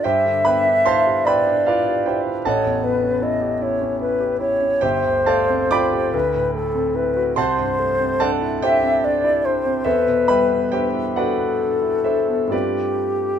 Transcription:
0.04 G2 G4 C5 E5 G5
0.26 D3
0.45 B3 B4 E5 G5 B5
0.65 D4
0.85 E4 C5 F5 A5 C6
1.06 G4
1.25 E4 B4 D5 E5 G5 B5
1.47 D4
1.67 E4 F4 B4 D5 F5
1.88 G4
2.06 E4 G4 C5 E5 G5
2.27 D4
2.45 A1 A4 C#5 D#5 F#5 A5
2.65 E2
2.83 B3 B4
3.02 C#4
3.22 E4 D#5
3.41 G4
3.62 E4 C#5
3.81 C#4
4.01 E4 B4
4.20 G4
4.40 E4 C#5
4.61 C#4
4.81 G1 G4 C5 E5 G5
5.05 D2
5.26 A3 A4 D5 F5 A5
5.49 C4
5.71 F4 D5 G5 B5 D6
5.92 G4
6.14 D2 B4
6.34 A2
6.55 A3 A4
6.75 C4
6.95 E4 B4
7.16 F#4
7.36 C2 C5 F#5 A5 C6
7.59 G2
7.79 A3
7.99 C4
8.20 D4 A4 D5 F#5 A5
8.42 E4
8.62 D4 G4 C5 E5 G5
8.83 C4
9.04 D4 D5
9.24 E4
9.45 D4 C5
9.65 C4
9.84 E2 A4 B4 C5 E5
10.07 B2
10.28 G3 B4 E5 G5 B5
10.52 B3
10.72 D4 G4 C5 E5 G5
10.95 E4
11.16 D4 F#4 A4 B4 D5 F#5
11.39 B3
11.60 D4
11.82 E4
12.04 D4 A4 C5 E5
12.29 B3
12.48 G2 A3 C4 D4 F4
12.52 G4 B4 D5

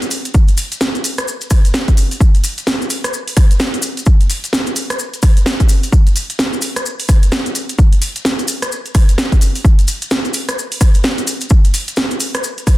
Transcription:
0.02 closed hi-hat, maracas
0.11 open hi-hat, maracas
0.25 closed hi-hat, maracas
0.34 kick, maracas
0.48 closed hi-hat, maracas
0.57 open hi-hat, maracas
0.72 closed hi-hat, maracas
0.81 snare, maracas
0.95 closed hi-hat, maracas
1.04 open hi-hat, maracas
1.18 cross-stick, closed hi-hat, maracas
1.28 maracas
1.41 closed hi-hat, maracas
1.50 kick, cross-stick, open hi-hat, maracas
1.65 closed hi-hat, maracas
1.74 snare, maracas
1.88 kick, closed hi-hat, maracas
1.97 open hi-hat, maracas
2.11 open hi-hat, maracas
2.21 kick, maracas
2.35 closed hi-hat, maracas
2.44 open hi-hat, maracas
2.58 closed hi-hat, maracas
2.67 snare, maracas
2.82 maracas
2.90 open hi-hat, maracas
3.04 cross-stick, closed hi-hat, maracas
3.13 maracas
3.28 open hi-hat, maracas
3.37 kick, cross-stick, open hi-hat, maracas
3.51 closed hi-hat, maracas
3.60 snare, maracas
3.74 closed hi-hat, maracas
3.82 open hi-hat, maracas
3.97 closed hi-hat, maracas
4.06 kick, maracas
4.21 closed hi-hat, maracas
4.30 open hi-hat, maracas
4.44 closed hi-hat, maracas
4.53 snare, maracas
4.67 closed hi-hat, maracas
4.76 open hi-hat, maracas
4.90 cross-stick, closed hi-hat, maracas
4.99 maracas
5.14 closed hi-hat, maracas
5.22 kick, cross-stick, open hi-hat, maracas
5.37 closed hi-hat, maracas
5.46 snare, maracas
5.60 kick, closed hi-hat, maracas
5.69 open hi-hat, maracas
5.83 open hi-hat, maracas
5.92 kick, maracas
6.07 closed hi-hat, maracas
6.16 open hi-hat, maracas
6.30 closed hi-hat, maracas
6.39 snare, maracas
6.53 maracas
6.62 open hi-hat, maracas
6.76 cross-stick, closed hi-hat, maracas
6.86 maracas
6.99 open hi-hat, maracas
7.09 kick, cross-stick, open hi-hat, maracas
7.23 closed hi-hat, maracas
7.32 snare, maracas
7.46 closed hi-hat, maracas
7.55 open hi-hat, maracas
7.69 closed hi-hat, maracas
7.78 kick, maracas
7.93 closed hi-hat, maracas
8.02 open hi-hat, maracas
8.16 closed hi-hat, maracas
8.25 snare, maracas
8.39 closed hi-hat, maracas
8.48 open hi-hat, maracas
8.62 cross-stick, closed hi-hat, maracas
8.72 maracas
8.86 closed hi-hat, maracas
8.95 kick, cross-stick, open hi-hat, maracas
9.09 closed hi-hat, maracas
9.18 snare, maracas
9.32 kick, closed hi-hat, maracas
9.41 open hi-hat, maracas
9.55 open hi-hat, maracas
9.65 kick, maracas
9.79 closed hi-hat, maracas
9.88 open hi-hat, maracas
10.02 closed hi-hat, maracas
10.11 snare, maracas
10.25 maracas
10.34 open hi-hat, maracas
10.49 cross-stick, closed hi-hat, maracas
10.59 maracas
10.72 open hi-hat, maracas
10.81 kick, cross-stick, open hi-hat, maracas
10.94 closed hi-hat, maracas
11.04 snare, maracas
11.18 closed hi-hat, maracas
11.27 open hi-hat, maracas
11.41 closed hi-hat, maracas
11.50 kick, maracas
11.65 closed hi-hat, maracas
11.74 open hi-hat, maracas
11.88 closed hi-hat, maracas
11.96 snare, maracas
12.11 closed hi-hat, maracas
12.20 open hi-hat, maracas
12.34 cross-stick, closed hi-hat, maracas
12.44 maracas
12.58 closed hi-hat, maracas
12.67 kick, cross-stick, open hi-hat, maracas

